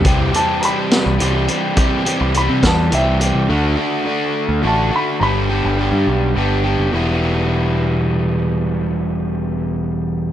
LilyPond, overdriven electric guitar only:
\new Staff \with { instrumentName = "Overdriven electric guitar" } { \time 6/8 \key e \minor \tempo 4. = 70 <c e g c' g'>8 <c e g c' g'>8 <e g c' g'>4 <e g c' g'>8 <g c' g'>8 | <c e g c' g'>8 <c e g c' g'>8 <e g c' g'>4 <e g c' g'>8 <g c' g'>8 | <d a d' fis'>8 <d a d' fis'>8 <d a d' fis'>4 <d a d' fis'>8 <a d' fis'>8 | <g, d g b d' g'>8 <g, d g b d' g'>8 <g b d' g'>4 <g b d' g'>8 <g b d' g'>8 |
<e, b, e g b e'>2.~ | <e, b, e g b e'>2. | }